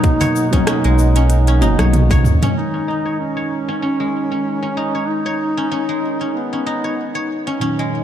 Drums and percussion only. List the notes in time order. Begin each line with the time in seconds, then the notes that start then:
0.04 kick, closed hi-hat, shaker
0.21 cajon bass, cajon slap, closed hi-hat, shaker
0.36 shaker
0.53 kick, cajon slap, closed hi-hat, low conga, shaker
0.67 cross-stick, closed hi-hat, shaker
0.84 closed hi-hat, shaker
0.99 shaker
1.16 closed hi-hat, shaker
1.30 closed hi-hat, shaker
1.47 closed hi-hat, shaker
1.61 high tom, shaker
1.79 cross-stick, closed hi-hat, low conga, shaker
1.93 closed hi-hat, mid tom, shaker
2.10 cajon bass, kick, closed hi-hat, mid tom, shaker
2.25 mid tom, shaker
2.42 cajon slap, closed hi-hat, mid tom, low conga, shaker